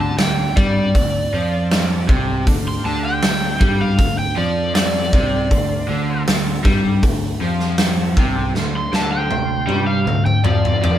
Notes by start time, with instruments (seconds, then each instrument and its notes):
Already playing: picked electric bass D2, overdriven electric guitar D3, tonewheel organ D4 F4 G4
0.01 electric slide guitar A5
0.18 picked electric bass D2, overdriven electric guitar D3, electric slide guitar G5, snare, open hi-hat
0.56 picked electric bass G2, overdriven electric guitar G3, electric slide guitar D5, kick, snare
0.95 picked electric bass D2, overdriven electric guitar D3, kick, open hi-hat
1.33 picked electric bass F2, overdriven electric guitar F3, tonewheel organ D4 F4 A4
1.71 snare, open hi-hat
2.08 picked electric bass C2, overdriven electric guitar C3, tonewheel organ D4 F4 A4, kick
2.44 picked electric bass D2, overdriven electric guitar D3, tonewheel organ D4 F4 G4, kick, open hi-hat
2.68 electric slide guitar C6
2.85 picked electric bass D2, overdriven electric guitar D3, electric slide guitar A5
3.05 electric slide guitar G5
3.22 picked electric bass D2, overdriven electric guitar D3, snare, open hi-hat
3.60 picked electric bass G2, overdriven electric guitar G3, kick
3.81 electric slide guitar F5
3.98 picked electric bass D2, overdriven electric guitar D3, kick, open hi-hat
4.19 electric slide guitar G5
4.36 picked electric bass F2, overdriven electric guitar F3, tonewheel organ D4 F4 A4, electric slide guitar D5
4.75 electric slide guitar D5, snare, open hi-hat
5.13 picked electric bass C2, overdriven electric guitar C3, tonewheel organ D4 F4 G4, kick
5.51 picked electric bass D2, overdriven electric guitar D3, tonewheel organ D4 F4 C5, kick, open hi-hat
5.88 picked electric bass D2, overdriven electric guitar D3
6.26 picked electric bass D2, overdriven electric guitar D3, snare, open hi-hat
6.64 picked electric bass G2, overdriven electric guitar G3, kick, snare
7.03 picked electric bass D2, overdriven electric guitar D3, kick, open hi-hat
7.41 picked electric bass F2, overdriven electric guitar F3, tonewheel organ D4 F4
7.45 tonewheel organ G4
7.60 snare
7.78 snare, open hi-hat
8.16 picked electric bass C2, overdriven electric guitar C3, tonewheel organ D4 F4 A4, kick
8.54 picked electric bass D2, overdriven electric guitar D3, snare
8.58 tonewheel organ D4 F4 C5
8.77 electric slide guitar C6
8.93 picked electric bass D2, overdriven electric guitar D3, electric slide guitar A5, snare
9.13 electric slide guitar G5
9.30 picked electric bass D2, overdriven electric guitar D3, high tom
9.67 picked electric bass G2, overdriven electric guitar G3, high tom
9.87 electric slide guitar F5
10.06 picked electric bass D2, overdriven electric guitar D3, mid tom
10.25 electric slide guitar G5, mid tom
10.44 picked electric bass F2, overdriven electric guitar F3, tonewheel organ A4, electric slide guitar D5, mid tom
10.48 tonewheel organ D4 F4
10.65 mid tom
10.82 picked electric bass F2, overdriven electric guitar F3, electric slide guitar D5, mid tom